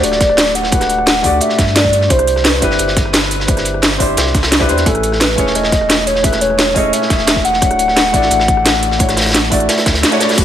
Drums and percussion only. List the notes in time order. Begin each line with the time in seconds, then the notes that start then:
0.04 cross-stick, closed hi-hat
0.12 snare
0.20 kick, snare, closed hi-hat
0.29 cross-stick
0.37 snare, closed hi-hat
0.46 snare
0.55 closed hi-hat
0.63 snare
0.72 kick, closed hi-hat
0.81 cross-stick, snare, closed hi-hat
0.89 closed hi-hat
0.98 cross-stick
1.07 snare, closed hi-hat
1.15 snare
1.24 kick, closed hi-hat, open hi-hat
1.41 closed hi-hat
1.49 snare
1.59 kick, snare, closed hi-hat
1.67 snare
1.76 snare, closed hi-hat
1.84 kick, snare
1.93 closed hi-hat
2.01 snare
2.10 kick, closed hi-hat
2.19 cross-stick, closed hi-hat
2.27 closed hi-hat
2.36 cross-stick, snare
2.44 snare, closed hi-hat
2.53 snare
2.62 kick, closed hi-hat
2.71 snare
2.79 cross-stick, closed hi-hat
2.88 snare
2.97 kick, snare, closed hi-hat
3.05 cross-stick
3.13 snare, closed hi-hat
3.22 snare
3.31 closed hi-hat
3.40 snare
3.48 kick, closed hi-hat
3.57 cross-stick, snare, closed hi-hat
3.65 closed hi-hat
3.74 cross-stick
3.82 snare, closed hi-hat
3.91 snare
4.00 kick, closed hi-hat, open hi-hat
4.17 snare, closed hi-hat
4.26 snare
4.34 kick, snare, closed hi-hat
4.43 snare, closed hi-hat
4.51 snare, closed hi-hat
4.60 kick, closed hi-hat
4.69 closed hi-hat
4.77 snare, closed hi-hat
4.86 kick, closed hi-hat
4.95 cross-stick, closed hi-hat
5.03 closed hi-hat
5.12 cross-stick, snare
5.20 snare, closed hi-hat
5.29 snare
5.38 kick, closed hi-hat
5.47 snare
5.55 cross-stick, closed hi-hat
5.63 snare
5.72 kick, snare, closed hi-hat
5.81 cross-stick
5.90 snare, closed hi-hat
5.97 snare
6.07 closed hi-hat
6.15 snare
6.24 kick, closed hi-hat
6.32 cross-stick, snare, closed hi-hat
6.41 closed hi-hat
6.50 cross-stick
6.59 snare, closed hi-hat
6.67 snare
6.75 kick, closed hi-hat, open hi-hat
6.93 closed hi-hat
7.02 snare
7.10 kick, snare, closed hi-hat
7.19 snare
7.27 snare, closed hi-hat
7.36 kick, snare
7.45 closed hi-hat
7.53 snare
7.62 kick, closed hi-hat
7.71 cross-stick, closed hi-hat
7.79 closed hi-hat
7.88 cross-stick, snare
7.97 snare, closed hi-hat
8.05 snare
8.14 kick, closed hi-hat
8.22 snare
8.31 cross-stick, closed hi-hat
8.40 snare
8.48 kick, closed hi-hat
8.57 cross-stick
8.66 snare, closed hi-hat
8.74 snare
8.83 closed hi-hat
8.91 snare
8.99 kick, closed hi-hat
9.09 cross-stick, snare, closed hi-hat
9.17 snare, closed hi-hat
9.21 snare, closed hi-hat
9.26 cross-stick, snare, closed hi-hat
9.30 snare, closed hi-hat
9.34 snare, closed hi-hat
9.43 snare
9.51 kick, closed hi-hat, open hi-hat
9.60 closed hi-hat
9.69 snare, closed hi-hat
9.78 snare, closed hi-hat
9.86 kick, snare, closed hi-hat
9.94 snare, closed hi-hat
10.03 snare, closed hi-hat
10.12 snare, closed hi-hat
10.20 snare, closed hi-hat
10.29 snare, closed hi-hat
10.34 snare, closed hi-hat
10.38 kick, closed hi-hat, crash